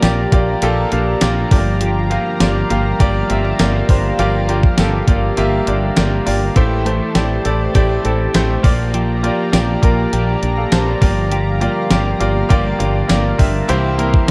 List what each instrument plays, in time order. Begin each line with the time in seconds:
Already playing: overdriven electric guitar F3 A#3, clean electric guitar F3 A#3, grand piano A#3 F4 G4 D5, analog synth pad G4 D5 A#5
0.02 fretless electric bass A#1, grand piano A#3 F4 G4 D5, clean electric guitar G4, snare, closed hi-hat, tambourine
0.32 fretless electric bass A#1, grand piano A#3 F4 G4 D5, clean electric guitar A#3, kick, closed hi-hat
0.61 fretless electric bass A#1, overdriven electric guitar A#2 F3 A#3, grand piano A#3 F4 G4 A4, clean electric guitar G4, closed hi-hat
0.92 fretless electric bass A#1, grand piano A#3 F4 G4 F5, clean electric guitar D4, closed hi-hat
1.21 fretless electric bass A#1, overdriven electric guitar A#2 F3 A#3, grand piano A#3 F4 G4 D5, clean electric guitar A#3, snare, closed hi-hat, tambourine
1.51 fretless electric bass G1, overdriven electric guitar G2 D3 G3, clean electric guitar F3, grand piano A3 F4 G4 D5, analog synth pad F5, kick, open hi-hat
1.58 grand piano A#3
1.81 clean electric guitar F3 G4, closed hi-hat
2.10 overdriven electric guitar D3 G3, grand piano A#3 F4 G4 F5, clean electric guitar A#3, closed hi-hat
2.40 fretless electric bass G1, grand piano A#3 F4 G4 D5, clean electric guitar G4, snare, closed hi-hat, tambourine
2.70 fretless electric bass G1, grand piano A#3 F4 G4 F5, clean electric guitar A#3, closed hi-hat
2.99 fretless electric bass G1, overdriven electric guitar G2 D3 G3, grand piano A#3 F4 G4 D5, clean electric guitar G4, kick, closed hi-hat
3.29 fretless electric bass G1, grand piano A#3 F4 G4 E5, clean electric guitar C4, closed hi-hat
3.44 clean electric guitar D4
3.58 fretless electric bass G1, overdriven electric guitar G2 D3 G3, grand piano A#3 F4 G4 D5, clean electric guitar A#3, snare, closed hi-hat, tambourine
3.89 fretless electric bass G1, grand piano A#3 F4 G4 C5, clean electric guitar D4, kick, open hi-hat
4.18 fretless electric bass G1, overdriven electric guitar G2 D3 G3, clean electric guitar F3 G4, grand piano A#3 F4 G4 D5, closed hi-hat
4.48 overdriven electric guitar D3 G3, clean electric guitar A#3, grand piano A#3 F4 G4 D5, closed hi-hat
4.63 kick
4.78 fretless electric bass G1, grand piano A#3 F4 G4 A4, clean electric guitar G4, snare, closed hi-hat, tambourine
5.08 fretless electric bass G1, grand piano A#3 F4 G4 D5, clean electric guitar A#3, kick, closed hi-hat
5.36 fretless electric bass G1, overdriven electric guitar G2 D3 G3, grand piano A#3 F4 G4 E5, clean electric guitar G4, closed hi-hat
5.67 fretless electric bass G1, grand piano A#3 F4 G4 D5, clean electric guitar D4, closed hi-hat
5.95 fretless electric bass G1, overdriven electric guitar G2 D3 G3, grand piano A#3 F4 G4 D5, clean electric guitar A#3, snare, closed hi-hat, tambourine
6.26 fretless electric bass G1, grand piano A#3 F4 G4 D5, clean electric guitar D4, open hi-hat
6.54 fretless electric bass A1, overdriven electric guitar A2 E3, clean electric guitar E3 G4, grand piano A3 E4 G4 C5, analog synth pad C5 A5, kick, closed hi-hat
6.59 overdriven electric guitar A3
6.85 grand piano A3 E4 G4 C5, clean electric guitar A3, closed hi-hat
7.15 fretless electric bass A1, grand piano A3 E4 G4 D5, clean electric guitar G4, snare, closed hi-hat, tambourine
7.45 fretless electric bass A1, grand piano A3 E4 G4 D5, clean electric guitar A3, closed hi-hat
7.74 fretless electric bass A1, overdriven electric guitar A2 E3 A3, grand piano A3 E4 G4 D5, clean electric guitar G4, kick, closed hi-hat
8.04 fretless electric bass A1, grand piano A3 E4 G4 A4, clean electric guitar C4, closed hi-hat
8.33 fretless electric bass A1, overdriven electric guitar A2 E3 A3, grand piano A3 E4 G4 C5, clean electric guitar A3, snare, closed hi-hat, tambourine
8.63 fretless electric bass A#1, overdriven electric guitar A#2 F3 A#3, clean electric guitar F3, grand piano A#3 F4 G4 D5, analog synth pad D5 A#5, kick, open hi-hat
8.94 clean electric guitar F3 G4, closed hi-hat
9.22 overdriven electric guitar F3 A#3, grand piano A#3 F4 G4 D5, clean electric guitar A#3, closed hi-hat
9.52 fretless electric bass A#1, grand piano A#3 F4 G4 D5, clean electric guitar G4, snare, closed hi-hat, tambourine
9.82 fretless electric bass A#1, grand piano A#3 F4 G4 A#4, clean electric guitar A#3, kick, closed hi-hat
10.12 fretless electric bass A#1, overdriven electric guitar A#2 F3 A#3, clean electric guitar G4, closed hi-hat
10.42 fretless electric bass A#1, clean electric guitar D4, closed hi-hat
10.57 grand piano A4 F5
10.71 fretless electric bass A#1, overdriven electric guitar A#2 F3 A#3, clean electric guitar A#3, grand piano C5 A5, snare, closed hi-hat, tambourine
10.87 grand piano D5 A#5
11.01 fretless electric bass G1, overdriven electric guitar D3 G3, clean electric guitar F3, grand piano A#3 F4 G4 D5, analog synth pad F5, kick, open hi-hat
11.05 overdriven electric guitar G2
11.32 clean electric guitar F3 G4, closed hi-hat
11.61 grand piano A#3 F4 G4 D5, clean electric guitar A#3, closed hi-hat
11.91 fretless electric bass G1, grand piano A#3 F4 G4 D5, clean electric guitar G4, snare, closed hi-hat, tambourine
12.20 fretless electric bass G1, grand piano A#3 F4 G4 D5, clean electric guitar A#3, closed hi-hat
12.49 fretless electric bass G1, overdriven electric guitar G2 D3 G3, grand piano A#3 F4 G4 D5, clean electric guitar G4, kick, closed hi-hat
12.79 fretless electric bass G1, grand piano A#3 F4 G4 D5, clean electric guitar D4, closed hi-hat
13.08 fretless electric bass G1, overdriven electric guitar G2 D3 G3, grand piano A#3 F4 G4 D5, clean electric guitar A#3, snare, closed hi-hat, tambourine
13.38 fretless electric bass G1, grand piano A#3 F4 G4 E5, clean electric guitar D4, kick, open hi-hat
13.68 fretless electric bass C2, overdriven electric guitar C3 G3, clean electric guitar E3 G4, grand piano A#3 E4 G4 C5, analog synth pad A#4 E5 C6, closed hi-hat
13.72 overdriven electric guitar C4
13.98 grand piano A#3 E4 G4 A#4, clean electric guitar A#3, closed hi-hat
14.14 kick
14.28 grand piano A#3 E4